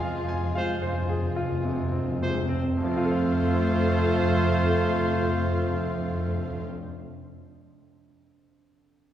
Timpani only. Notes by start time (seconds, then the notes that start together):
0.05 F2
0.14 F2
0.24 F2
0.34 F2
0.44 F2
0.53 F2
0.62 F2
0.73 F2
0.83 F2
0.93 F2
1.02 F2
1.12 F2
1.22 F2
1.32 F2
1.42 F2
1.51 F2
1.61 F2
1.71 F2
1.82 F2
1.93 F2
2.02 F2
2.12 F2
2.22 F2
2.32 F2
2.42 F2
2.53 F2
2.63 F2
2.80 F2
2.88 F2
2.95 F2
3.03 F2
3.09 F2
3.17 F2
3.25 F2
3.32 F2
3.40 F2
3.47 F2
3.54 F2
3.61 F2
3.68 F2
3.76 F2
3.83 F2
3.91 F2
3.98 F2
4.06 F2
4.13 F2
4.20 F2
4.27 F2
4.34 F2
4.41 F2
4.48 F2
4.56 F2
4.63 F2
4.70 F2
4.84 F2
4.91 F2
4.98 F2
5.06 F2
5.13 F2
5.20 F2
5.28 F2
5.35 F2
5.42 F2
5.49 F2
5.56 F2
5.64 F2
5.71 F2
5.78 F2
5.85 F2
5.92 F2
5.99 F2
6.06 F2
6.14 F2
6.21 F2
6.28 F2
6.35 F2
6.42 F2
6.50 F2
6.58 F2